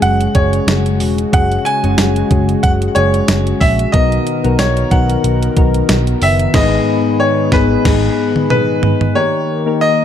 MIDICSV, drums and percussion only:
0, 0, Header, 1, 2, 480
1, 0, Start_track
1, 0, Key_signature, 5, "minor"
1, 0, Tempo, 652174
1, 981, Time_signature, 4, 2, 24, 8
1, 7395, End_track
2, 0, Start_track
2, 0, Title_t, "Drums"
2, 16, Note_on_c, 9, 42, 83
2, 90, Note_off_c, 9, 42, 0
2, 151, Note_on_c, 9, 42, 58
2, 225, Note_off_c, 9, 42, 0
2, 256, Note_on_c, 9, 42, 80
2, 260, Note_on_c, 9, 36, 92
2, 330, Note_off_c, 9, 42, 0
2, 333, Note_off_c, 9, 36, 0
2, 390, Note_on_c, 9, 42, 51
2, 464, Note_off_c, 9, 42, 0
2, 499, Note_on_c, 9, 42, 83
2, 499, Note_on_c, 9, 54, 63
2, 501, Note_on_c, 9, 38, 117
2, 572, Note_off_c, 9, 54, 0
2, 573, Note_off_c, 9, 42, 0
2, 574, Note_off_c, 9, 38, 0
2, 633, Note_on_c, 9, 42, 47
2, 706, Note_off_c, 9, 42, 0
2, 738, Note_on_c, 9, 46, 86
2, 811, Note_off_c, 9, 46, 0
2, 871, Note_on_c, 9, 42, 58
2, 945, Note_off_c, 9, 42, 0
2, 980, Note_on_c, 9, 36, 109
2, 981, Note_on_c, 9, 42, 91
2, 1054, Note_off_c, 9, 36, 0
2, 1055, Note_off_c, 9, 42, 0
2, 1115, Note_on_c, 9, 42, 39
2, 1189, Note_off_c, 9, 42, 0
2, 1224, Note_on_c, 9, 42, 69
2, 1298, Note_off_c, 9, 42, 0
2, 1353, Note_on_c, 9, 42, 46
2, 1426, Note_off_c, 9, 42, 0
2, 1457, Note_on_c, 9, 38, 123
2, 1459, Note_on_c, 9, 42, 95
2, 1459, Note_on_c, 9, 54, 68
2, 1531, Note_off_c, 9, 38, 0
2, 1533, Note_off_c, 9, 42, 0
2, 1533, Note_off_c, 9, 54, 0
2, 1590, Note_on_c, 9, 42, 62
2, 1664, Note_off_c, 9, 42, 0
2, 1698, Note_on_c, 9, 42, 65
2, 1699, Note_on_c, 9, 36, 89
2, 1771, Note_off_c, 9, 42, 0
2, 1773, Note_off_c, 9, 36, 0
2, 1831, Note_on_c, 9, 42, 54
2, 1905, Note_off_c, 9, 42, 0
2, 1939, Note_on_c, 9, 42, 87
2, 1941, Note_on_c, 9, 36, 88
2, 2013, Note_off_c, 9, 42, 0
2, 2015, Note_off_c, 9, 36, 0
2, 2074, Note_on_c, 9, 42, 59
2, 2147, Note_off_c, 9, 42, 0
2, 2177, Note_on_c, 9, 42, 81
2, 2250, Note_off_c, 9, 42, 0
2, 2311, Note_on_c, 9, 42, 51
2, 2384, Note_off_c, 9, 42, 0
2, 2415, Note_on_c, 9, 54, 64
2, 2416, Note_on_c, 9, 42, 91
2, 2417, Note_on_c, 9, 38, 119
2, 2489, Note_off_c, 9, 42, 0
2, 2489, Note_off_c, 9, 54, 0
2, 2491, Note_off_c, 9, 38, 0
2, 2552, Note_on_c, 9, 42, 48
2, 2626, Note_off_c, 9, 42, 0
2, 2658, Note_on_c, 9, 36, 88
2, 2658, Note_on_c, 9, 46, 80
2, 2731, Note_off_c, 9, 46, 0
2, 2732, Note_off_c, 9, 36, 0
2, 2791, Note_on_c, 9, 42, 62
2, 2865, Note_off_c, 9, 42, 0
2, 2897, Note_on_c, 9, 42, 88
2, 2899, Note_on_c, 9, 36, 104
2, 2971, Note_off_c, 9, 42, 0
2, 2972, Note_off_c, 9, 36, 0
2, 3033, Note_on_c, 9, 42, 41
2, 3107, Note_off_c, 9, 42, 0
2, 3140, Note_on_c, 9, 42, 67
2, 3214, Note_off_c, 9, 42, 0
2, 3271, Note_on_c, 9, 42, 48
2, 3345, Note_off_c, 9, 42, 0
2, 3377, Note_on_c, 9, 38, 122
2, 3379, Note_on_c, 9, 42, 100
2, 3379, Note_on_c, 9, 54, 69
2, 3451, Note_off_c, 9, 38, 0
2, 3453, Note_off_c, 9, 42, 0
2, 3453, Note_off_c, 9, 54, 0
2, 3509, Note_on_c, 9, 42, 63
2, 3583, Note_off_c, 9, 42, 0
2, 3616, Note_on_c, 9, 42, 63
2, 3618, Note_on_c, 9, 36, 87
2, 3689, Note_off_c, 9, 42, 0
2, 3692, Note_off_c, 9, 36, 0
2, 3750, Note_on_c, 9, 42, 57
2, 3824, Note_off_c, 9, 42, 0
2, 3859, Note_on_c, 9, 42, 85
2, 3932, Note_off_c, 9, 42, 0
2, 3993, Note_on_c, 9, 42, 62
2, 4067, Note_off_c, 9, 42, 0
2, 4096, Note_on_c, 9, 42, 81
2, 4099, Note_on_c, 9, 36, 88
2, 4170, Note_off_c, 9, 42, 0
2, 4172, Note_off_c, 9, 36, 0
2, 4228, Note_on_c, 9, 42, 54
2, 4301, Note_off_c, 9, 42, 0
2, 4334, Note_on_c, 9, 42, 86
2, 4334, Note_on_c, 9, 54, 62
2, 4335, Note_on_c, 9, 38, 119
2, 4407, Note_off_c, 9, 54, 0
2, 4408, Note_off_c, 9, 42, 0
2, 4409, Note_off_c, 9, 38, 0
2, 4469, Note_on_c, 9, 42, 46
2, 4543, Note_off_c, 9, 42, 0
2, 4575, Note_on_c, 9, 46, 87
2, 4649, Note_off_c, 9, 46, 0
2, 4706, Note_on_c, 9, 42, 60
2, 4780, Note_off_c, 9, 42, 0
2, 4813, Note_on_c, 9, 38, 102
2, 4813, Note_on_c, 9, 49, 81
2, 4818, Note_on_c, 9, 36, 106
2, 4886, Note_off_c, 9, 38, 0
2, 4886, Note_off_c, 9, 49, 0
2, 4891, Note_off_c, 9, 36, 0
2, 5534, Note_on_c, 9, 38, 101
2, 5539, Note_on_c, 9, 36, 103
2, 5608, Note_off_c, 9, 38, 0
2, 5613, Note_off_c, 9, 36, 0
2, 5780, Note_on_c, 9, 36, 108
2, 5780, Note_on_c, 9, 38, 101
2, 5780, Note_on_c, 9, 49, 86
2, 5853, Note_off_c, 9, 38, 0
2, 5853, Note_off_c, 9, 49, 0
2, 5854, Note_off_c, 9, 36, 0
2, 6152, Note_on_c, 9, 47, 73
2, 6225, Note_off_c, 9, 47, 0
2, 6259, Note_on_c, 9, 45, 83
2, 6332, Note_off_c, 9, 45, 0
2, 6498, Note_on_c, 9, 43, 104
2, 6572, Note_off_c, 9, 43, 0
2, 6632, Note_on_c, 9, 43, 91
2, 6705, Note_off_c, 9, 43, 0
2, 7395, End_track
0, 0, End_of_file